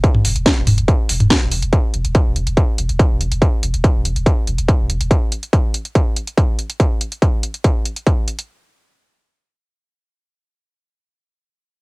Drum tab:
HH |x-oxx-oxx-oxx-ox|x-xxx-xxx-xxx-xx|x-xxx-xxx-xxx-xx|x-xxx-xxx-xxx-xx|
SD |----o-------o---|----------------|----------------|----------------|
T2 |-o----o----o----|----------------|----------------|----------------|
BD |o---o---o---o---|o---o---o---o---|o---o---o---o---|o---o---o---o---|

HH |x-xxx-xxx-xxx-xx|----------------|----------------|
SD |----------------|----------------|----------------|
T2 |----------------|----------------|----------------|
BD |o---o---o---o---|----------------|----------------|